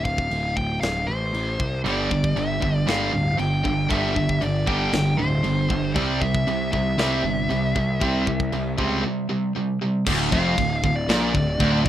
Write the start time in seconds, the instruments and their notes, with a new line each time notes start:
Already playing: picked electric bass D1
0.05 lead electric guitar F5, kick
0.18 kick
0.30 picked electric bass D1, china
0.57 picked electric bass D1, lead electric guitar G5, kick
0.81 picked electric bass D1, lead electric guitar F5, snare, china
1.06 picked electric bass A1, lead electric guitar C5
1.34 picked electric bass A1, china
1.60 picked electric bass C2, kick
1.85 picked electric bass G1, distorted electric guitar G2 D3 G3, lead electric guitar D5, china
2.11 distorted electric guitar G2 D3, kick
2.24 kick
2.36 picked electric bass G1, distorted electric guitar G2 D3, lead electric guitar E5, china
2.62 picked electric bass G1, distorted electric guitar G2 D3, kick
2.87 picked electric bass G1, distorted electric guitar G2 D3 G3, lead electric guitar F5, snare, china
3.12 picked electric bass D1, distorted electric guitar G2 D3
3.38 picked electric bass G1, distorted electric guitar G2 D3, lead electric guitar G5, china
3.64 picked electric bass G1, distorted electric guitar G2 D3, kick
3.88 picked electric bass G1, distorted electric guitar G2 D3 G3, lead electric guitar E5, kick, china
4.16 distorted electric guitar G2 D3, kick
4.29 kick
4.41 picked electric bass G1, distorted electric guitar G2 D3, lead electric guitar D5, china
4.66 picked electric bass G1, distorted electric guitar G2 D3 G3, lead electric guitar G5, kick
4.92 picked electric bass G1, distorted electric guitar G2 D3, snare, china
5.17 picked electric bass D1, distorted electric guitar G2 D3, lead electric guitar C5
5.43 picked electric bass G1, distorted electric guitar G2 D3, china
5.69 picked electric bass G1, distorted electric guitar G2 D3, kick
5.94 picked electric bass C2, distorted electric guitar C3 G3 C4, lead electric guitar D5, kick, china
6.21 distorted electric guitar C3 G3, lead electric guitar E5, kick
6.35 kick
6.47 picked electric bass C2, distorted electric guitar C3 G3, china
6.72 picked electric bass C2, distorted electric guitar C3 G3, lead electric guitar E5, kick
6.98 picked electric bass C2, distorted electric guitar C3 G3 C4, snare, china
7.23 picked electric bass G1, distorted electric guitar C3 G3
7.49 picked electric bass C2, distorted electric guitar C3 G3, china
7.75 picked electric bass C2, distorted electric guitar C3 G3, kick
8.00 picked electric bass C2, distorted electric guitar C3 G3 C4, kick, china
8.26 distorted electric guitar C3 G3, kick
8.40 kick
8.52 picked electric bass C2, distorted electric guitar C3 G3, china
8.78 picked electric bass C#2, distorted electric guitar C3 G3 C4, kick
9.03 distorted electric guitar C3 G3
9.29 distorted electric guitar C3 G3
9.55 distorted electric guitar C3 G3
9.81 distorted electric guitar C3 G3
10.06 picked electric bass D1, distorted electric guitar D2, kick, crash, china
10.32 picked electric bass F1, distorted electric guitar F2, lead electric guitar F5, kick
10.58 picked electric bass D1, distorted electric guitar D2, kick, china
10.84 picked electric bass D1, distorted electric guitar D2, lead electric guitar F5, kick
10.95 lead electric guitar D5
11.09 picked electric bass A#1, distorted electric guitar A#2, lead electric guitar D5, snare, china
11.35 picked electric bass D1, distorted electric guitar D2, kick
11.60 picked electric bass D1, distorted electric guitar D2, kick, china
11.85 distorted electric guitar D2, kick